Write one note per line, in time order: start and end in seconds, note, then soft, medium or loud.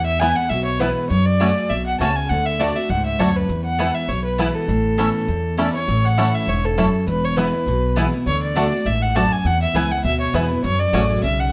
0.00 0.31 E2 loud
0.00 0.48 E2 medium
0.06 0.21 E5 medium
0.19 0.36 E3 medium
0.19 0.36 G#3 medium
0.19 0.31 B3 medium
0.19 0.28 B3 medium
0.19 0.37 B3 medium
0.19 0.31 E4 medium
0.19 0.29 E4 medium
0.19 0.35 E4 medium
0.19 0.31 B4 medium
0.19 0.37 G#5 loud
0.19 0.31 G#5 medium
0.36 0.51 B3 soft
0.36 0.50 E4 medium
0.36 0.51 F#5 loud
0.49 0.90 B1 medium
0.49 1.08 B2 medium
0.49 0.64 E5 loud
0.65 0.81 C#5 medium
0.80 1.09 E3 medium
0.80 1.09 G#3 medium
0.80 0.90 B3 medium
0.80 0.88 B3 medium
0.80 1.10 B3 medium
0.80 0.90 E4 medium
0.80 0.88 E4 medium
0.80 1.10 E4 medium
0.80 1.03 B4 medium
0.80 0.91 B4 medium
0.80 0.91 G#5 medium
1.10 1.50 F#2 medium
1.10 1.68 F#2 medium
1.10 1.26 C#5 medium
1.25 1.71 D5 loud
1.40 1.69 F#3 medium
1.40 1.50 A3 medium
1.40 1.48 A3 medium
1.40 1.69 A3 medium
1.40 1.48 C#4 medium
1.40 1.70 C#4 medium
1.40 1.50 F#4 medium
1.40 1.48 F#4 medium
1.40 1.70 G#4 medium
1.40 1.50 C#5 medium
1.40 1.50 G#5 loud
1.70 1.96 B1 medium
1.70 1.99 B2 medium
1.70 1.86 E5 medium
1.86 1.99 F#5 medium
2.00 2.25 C#2 medium
2.00 2.29 C#3 medium
2.00 2.10 A3 medium
2.00 2.08 A3 medium
2.00 2.08 C#4 medium
2.00 2.10 F#4 medium
2.00 2.08 F#4 medium
2.00 2.10 C#5 loud
2.00 2.10 G#5 medium
2.00 2.17 A5 loud
2.15 2.31 G#5 medium
2.29 2.70 D2 medium
2.29 2.58 D3 medium
2.29 2.47 F#5 loud
2.45 2.61 E5 medium
2.59 2.75 D3 medium
2.59 2.70 A3 medium
2.59 2.75 A3 medium
2.59 2.67 A3 medium
2.59 2.76 D4 medium
2.59 2.68 D4 medium
2.59 2.70 F#4 medium
2.59 2.68 F#4 medium
2.59 2.74 F#4 medium
2.59 2.77 D5 medium
2.59 2.70 D5 loud
2.59 2.70 A5 medium
2.75 2.90 D4 medium
2.75 2.89 F#4 medium
2.75 2.91 E5 medium
2.89 3.15 C#2 medium
2.89 3.18 G#2 medium
2.89 3.05 F#5 loud
3.06 3.21 E5 medium
3.19 3.45 D2 medium
3.19 3.48 F#2 medium
3.19 3.29 A3 medium
3.19 3.27 A3 medium
3.19 3.27 D4 medium
3.19 3.29 F#4 medium
3.19 3.27 F#4 medium
3.19 3.37 C#5 medium
3.19 3.29 D5 medium
3.19 3.29 A5 loud
3.36 3.64 B4 medium
3.49 3.89 E2 medium
3.49 4.06 E2 medium
3.65 3.96 F#5 loud
3.79 4.08 E3 medium
3.79 4.08 G#3 medium
3.79 3.89 B3 medium
3.79 3.87 B3 medium
3.79 4.08 B3 medium
3.79 3.89 E4 medium
3.79 3.87 E4 medium
3.79 4.09 E4 medium
3.79 3.89 B4 medium
3.79 3.89 G#5 medium
3.94 4.10 E5 medium
4.08 4.48 B1 medium
4.08 4.66 B2 medium
4.08 4.24 C#5 medium
4.24 4.56 B4 medium
4.38 4.67 E3 medium
4.38 4.68 G#3 medium
4.38 4.48 B3 medium
4.38 4.46 B3 medium
4.38 4.68 B3 medium
4.38 4.48 E4 medium
4.38 4.47 E4 medium
4.38 4.68 E4 medium
4.38 4.49 B4 loud
4.38 4.49 G#5 loud
4.54 5.58 A4 medium
4.68 5.08 A1 loud
4.68 5.26 A2 medium
4.97 5.26 E3 medium
4.97 5.06 A3 medium
4.97 5.27 B3 medium
4.97 5.08 C#4 medium
4.97 5.27 C#4 medium
4.97 5.06 C#4 medium
4.97 5.06 E4 medium
4.97 5.28 E4 medium
4.97 5.08 A4 loud
4.97 5.08 E5 medium
4.97 5.08 B5 medium
5.28 5.85 E2 medium
5.28 5.68 E2 medium
5.58 5.73 E3 medium
5.58 5.65 A3 medium
5.58 5.74 B3 medium
5.58 5.68 C#4 medium
5.58 5.66 C#4 medium
5.58 5.74 C#4 medium
5.58 5.66 E4 medium
5.58 5.72 E4 medium
5.58 5.68 A4 medium
5.58 5.73 D5 medium
5.58 5.68 E5 medium
5.58 5.68 B5 medium
5.74 5.88 C#4 soft
5.74 5.87 E4 medium
5.74 6.06 C#5 medium
5.88 6.28 A1 medium
5.88 6.45 A2 medium
6.05 6.36 F#5 loud
6.17 6.46 E3 medium
6.17 6.27 A3 medium
6.17 6.25 A3 medium
6.17 6.46 A3 medium
6.17 6.25 C#4 medium
6.17 6.47 C#4 medium
6.17 6.27 E4 medium
6.17 6.25 E4 medium
6.17 6.47 E4 medium
6.17 6.28 C#5 loud
6.17 6.28 A5 medium
6.34 6.50 E5 medium
6.47 6.87 E1 medium
6.47 6.76 G#2 medium
6.47 6.66 C#5 medium
6.65 7.08 A4 medium
6.77 7.06 F#2 medium
6.77 6.87 A3 medium
6.77 6.85 A3 medium
6.77 6.85 C#4 medium
6.77 6.87 E4 medium
6.77 6.85 E4 medium
6.77 6.87 C#5 loud
6.77 6.87 A5 loud
7.07 7.47 E1 loud
7.07 7.64 E2 medium
7.07 7.26 B4 loud
7.25 7.39 C#5 medium
7.36 7.52 E3 medium
7.36 7.53 G#3 medium
7.36 7.46 B3 medium
7.36 7.44 B3 medium
7.36 7.53 B3 medium
7.36 7.46 E4 medium
7.36 7.45 E4 medium
7.36 7.52 E4 medium
7.36 7.47 B4 medium
7.36 8.12 B4 medium
7.36 7.47 G#5 medium
7.53 7.67 B3 soft
7.53 7.66 E4 medium
7.66 8.06 B1 medium
7.66 8.24 B2 medium
7.96 8.12 E3 medium
7.96 8.12 G#3 medium
7.96 8.06 B3 medium
7.96 8.04 B3 medium
7.96 8.13 B3 medium
7.96 8.06 E4 medium
7.96 8.04 E4 medium
7.96 8.12 E4 medium
7.96 8.06 B4 loud
7.96 8.06 G#5 loud
8.13 8.27 B3 medium
8.13 8.26 E4 medium
8.26 8.66 D2 medium
8.26 8.54 D3 medium
8.26 8.41 C#5 loud
8.42 8.88 D5 loud
8.55 8.71 D3 medium
8.55 8.65 A3 medium
8.55 8.63 A3 medium
8.55 8.72 A3 medium
8.55 8.64 D4 medium
8.55 8.72 D4 medium
8.55 8.66 F#4 medium
8.55 8.64 F#4 medium
8.55 8.71 F#4 medium
8.55 8.66 D5 loud
8.55 8.66 A5 medium
8.72 8.86 D4 soft
8.72 8.85 F#4 medium
8.85 9.25 A1 medium
8.85 9.14 G#2 medium
8.85 9.03 E5 loud
9.02 9.17 F#5 loud
9.15 9.44 F#2 medium
9.15 9.25 A3 medium
9.15 9.23 A3 medium
9.15 9.23 D4 medium
9.15 9.25 F#4 medium
9.15 9.23 F#4 medium
9.15 9.25 D5 medium
9.15 9.33 A5 loud
9.15 9.25 A5 loud
9.32 9.48 G#5 loud
9.45 9.65 E2 loud
9.45 10.02 E2 medium
9.45 9.62 F#5 loud
9.62 9.77 E5 medium
9.74 10.00 C#2 medium
9.74 9.90 E3 medium
9.74 9.90 G#3 medium
9.74 9.84 B3 medium
9.74 9.82 B3 medium
9.74 9.91 B3 loud
9.74 9.84 E4 medium
9.74 9.83 E4 medium
9.74 9.89 E4 loud
9.74 9.85 B4 medium
9.74 9.85 G#5 medium
9.74 9.93 G#5 loud
9.90 10.04 E4 medium
9.90 10.04 F#5 loud
10.04 10.29 D2 medium
10.04 10.61 B2 loud
10.04 10.20 E5 loud
10.20 10.36 C#5 medium
10.33 10.59 E2 medium
10.33 10.49 E3 loud
10.33 10.50 G#3 medium
10.33 10.44 B3 medium
10.33 10.42 B3 medium
10.33 10.50 B3 loud
10.33 10.44 E4 medium
10.33 10.42 E4 medium
10.33 10.49 E4 loud
10.33 10.44 B4 medium
10.33 10.57 B4 medium
10.33 10.44 G#5 medium
10.50 10.64 B3 medium
10.50 10.63 E4 medium
10.63 10.83 F#2 loud
10.63 11.21 F#2 medium
10.63 10.81 C#5 loud
10.79 11.23 D5 loud
10.93 11.18 A1 medium
10.93 11.22 F#3 medium
10.93 11.03 A3 medium
10.93 11.22 A3 medium
10.93 11.01 A3 medium
10.93 11.23 C#4 medium
10.93 11.01 C#4 medium
10.93 11.03 F#4 medium
10.93 11.01 F#4 medium
10.93 11.23 G#4 loud
10.93 11.03 C#5 medium
10.93 11.04 G#5 loud
11.23 11.49 B1 medium
11.23 11.52 C#3 loud
11.23 11.41 E5 loud
11.39 11.52 F#5 medium